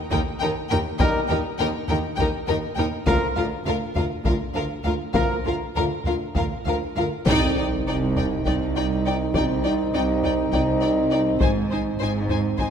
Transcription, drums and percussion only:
0.12 taiko
1.00 taiko
1.89 taiko low
2.18 taiko
3.07 taiko
3.96 taiko low
4.25 taiko
5.14 taiko
6.05 taiko low
6.35 taiko
7.27 taiko
8.16 taiko low
8.46 taiko
9.34 taiko
10.23 taiko low
10.52 taiko
11.40 taiko
12.29 taiko low
12.58 taiko

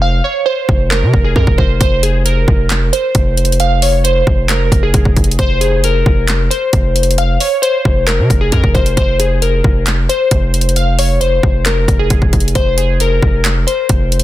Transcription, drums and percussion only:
0.69 kick
0.91 clap
1.14 kick
1.36 kick
1.47 kick
1.58 kick
1.81 kick, closed hi-hat
2.03 closed hi-hat
2.26 closed hi-hat
2.48 kick
2.70 clap, closed hi-hat
2.93 closed hi-hat
3.15 kick, closed hi-hat
3.37 closed hi-hat
3.45 closed hi-hat
3.52 closed hi-hat
3.60 closed hi-hat
3.82 open hi-hat
4.05 closed hi-hat
4.27 kick
4.49 clap, closed hi-hat
4.72 kick, closed hi-hat
4.94 kick, closed hi-hat
5.05 kick
5.17 kick, closed hi-hat
5.24 closed hi-hat
5.31 closed hi-hat
5.39 kick, closed hi-hat
5.61 closed hi-hat
5.84 closed hi-hat
6.06 kick
6.28 clap, closed hi-hat
6.51 closed hi-hat
6.73 kick, closed hi-hat
6.96 closed hi-hat
7.03 closed hi-hat
7.11 closed hi-hat
7.18 closed hi-hat
7.40 open hi-hat
7.63 closed hi-hat
7.85 kick
8.07 clap, closed hi-hat
8.30 kick, closed hi-hat
8.52 kick, closed hi-hat
8.64 kick
8.75 kick, closed hi-hat
8.86 closed hi-hat
8.97 kick, closed hi-hat
9.20 closed hi-hat
9.42 closed hi-hat
9.64 kick
9.87 clap, closed hi-hat
10.10 closed hi-hat
10.31 kick, closed hi-hat
10.54 closed hi-hat
10.61 closed hi-hat
10.69 closed hi-hat
10.76 closed hi-hat
10.99 open hi-hat
11.21 closed hi-hat
11.43 kick
11.65 clap, closed hi-hat
11.88 kick, closed hi-hat
12.10 kick, closed hi-hat
12.22 kick
12.33 kick, closed hi-hat
12.40 closed hi-hat
12.48 closed hi-hat
12.55 kick, closed hi-hat
12.78 closed hi-hat
13.00 closed hi-hat
13.22 kick
13.45 clap, closed hi-hat
13.68 closed hi-hat
13.89 kick, closed hi-hat
14.12 closed hi-hat
14.20 closed hi-hat

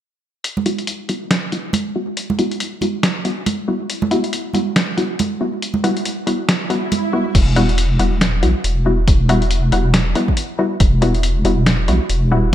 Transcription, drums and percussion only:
0.44 closed hi-hat
0.57 high conga
0.66 closed hi-hat
0.78 closed hi-hat
0.87 closed hi-hat
1.09 closed hi-hat
1.31 snare, closed hi-hat
1.52 closed hi-hat
1.73 closed hi-hat, high conga
2.17 closed hi-hat
2.30 high conga
2.39 closed hi-hat
2.51 closed hi-hat
2.60 closed hi-hat
2.81 closed hi-hat, high conga
3.03 snare, closed hi-hat
3.25 closed hi-hat
3.46 closed hi-hat, high conga
3.90 closed hi-hat
4.02 high conga
4.11 closed hi-hat
4.24 closed hi-hat
4.33 closed hi-hat
4.53 closed hi-hat, high conga
4.76 snare, closed hi-hat
4.98 closed hi-hat
5.19 closed hi-hat, high conga
5.62 closed hi-hat
5.74 high conga
5.84 closed hi-hat
5.97 closed hi-hat
6.05 closed hi-hat
6.27 closed hi-hat
6.49 snare, closed hi-hat
6.70 closed hi-hat
6.92 closed hi-hat, high conga
7.35 kick, closed hi-hat, crash
7.56 closed hi-hat
7.69 closed hi-hat
7.78 closed hi-hat
7.99 closed hi-hat
8.21 snare, closed hi-hat
8.43 closed hi-hat
8.64 closed hi-hat
9.08 kick, closed hi-hat
9.29 closed hi-hat
9.42 closed hi-hat
9.51 closed hi-hat
9.72 closed hi-hat
9.94 snare, closed hi-hat
10.15 closed hi-hat
10.28 kick
10.37 closed hi-hat
10.80 kick, closed hi-hat
11.02 closed hi-hat
11.15 closed hi-hat
11.23 closed hi-hat
11.45 closed hi-hat
11.66 snare, closed hi-hat
11.88 closed hi-hat
12.10 closed hi-hat

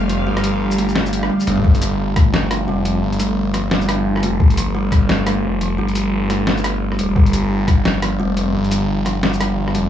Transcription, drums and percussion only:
0.09 closed hi-hat
0.37 cross-stick, closed hi-hat
0.44 closed hi-hat
0.71 shaker
0.78 closed hi-hat
0.89 shaker
0.95 snare
1.06 shaker
1.13 closed hi-hat
1.23 cross-stick
1.40 shaker
1.47 cross-stick, closed hi-hat, high tom
1.57 mid tom
1.64 kick
1.75 closed hi-hat
1.82 closed hi-hat, shaker
2.16 kick, cross-stick, closed hi-hat
2.34 cross-stick, snare
2.51 cross-stick, closed hi-hat
2.85 closed hi-hat
3.13 closed hi-hat
3.20 closed hi-hat, shaker
3.54 cross-stick, closed hi-hat
3.71 snare
3.81 shaker
3.89 cross-stick, closed hi-hat
4.16 cross-stick
4.21 cross-stick, closed hi-hat
4.40 kick
4.50 closed hi-hat
4.57 closed hi-hat, shaker
4.92 kick, cross-stick, closed hi-hat
5.09 cross-stick, snare
5.26 cross-stick, closed hi-hat
5.61 closed hi-hat
5.88 closed hi-hat
5.95 closed hi-hat, shaker
6.30 cross-stick, closed hi-hat
6.47 snare
6.57 shaker
6.64 cross-stick, closed hi-hat
6.92 cross-stick
6.99 closed hi-hat
7.16 kick
7.26 closed hi-hat
7.33 closed hi-hat, shaker
7.68 kick, cross-stick, closed hi-hat
7.85 cross-stick, snare
8.02 cross-stick, closed hi-hat
8.37 closed hi-hat
8.64 closed hi-hat
8.71 closed hi-hat, shaker
9.06 cross-stick, closed hi-hat
9.23 snare
9.33 shaker
9.41 cross-stick, closed hi-hat
9.68 cross-stick
9.75 closed hi-hat

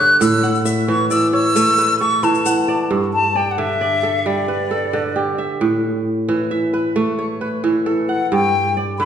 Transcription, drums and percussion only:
0.21 shaker
0.44 shaker
0.55 shaker
0.66 shaker
1.11 shaker
1.56 shaker
1.78 shaker
2.23 shaker
2.34 shaker
2.46 shaker

